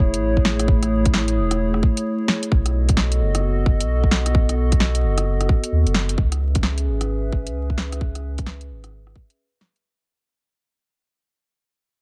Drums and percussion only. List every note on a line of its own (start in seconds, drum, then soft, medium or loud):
0.14 closed hi-hat medium
0.37 kick medium
0.45 snare loud
0.60 cross-stick soft
0.60 closed hi-hat medium
0.68 kick loud
0.83 cross-stick soft
0.83 closed hi-hat soft
1.06 kick loud
1.06 closed hi-hat medium
1.14 snare loud
1.28 closed hi-hat soft
1.51 cross-stick medium
1.51 closed hi-hat medium
1.74 cross-stick medium
1.83 kick loud
1.97 closed hi-hat medium
2.28 snare loud
2.43 closed hi-hat medium
2.52 kick loud
2.66 cross-stick soft
2.66 closed hi-hat soft
2.89 kick loud
2.89 closed hi-hat medium
2.97 snare loud
3.12 closed hi-hat soft
3.35 cross-stick medium
3.35 closed hi-hat medium
3.66 kick loud
3.80 closed hi-hat medium
4.04 kick medium
4.11 snare loud
4.26 cross-stick medium
4.26 closed hi-hat medium
4.35 kick loud
4.49 cross-stick soft
4.49 closed hi-hat soft
4.72 kick loud
4.72 closed hi-hat medium
4.80 snare loud
4.95 closed hi-hat soft
5.18 cross-stick medium
5.18 closed hi-hat medium
5.41 cross-stick medium
5.41 closed hi-hat soft
5.49 kick loud
5.64 closed hi-hat medium
5.87 closed hi-hat soft
5.94 snare loud
6.09 closed hi-hat medium
6.18 kick loud
6.32 cross-stick soft
6.32 closed hi-hat soft
6.55 kick loud
6.55 closed hi-hat medium
6.63 snare loud
6.78 closed hi-hat soft
7.01 cross-stick medium
7.01 closed hi-hat medium
7.32 kick medium
7.47 closed hi-hat medium
7.70 kick medium
7.78 snare loud
7.92 cross-stick medium
7.92 closed hi-hat medium
8.01 kick loud
8.15 cross-stick soft
8.15 closed hi-hat soft
8.38 kick loud
8.38 closed hi-hat medium
8.46 snare loud
8.61 closed hi-hat soft
8.84 cross-stick medium
8.84 closed hi-hat medium
9.07 cross-stick soft
9.15 kick medium
9.30 closed hi-hat medium
9.61 snare medium
9.76 closed hi-hat medium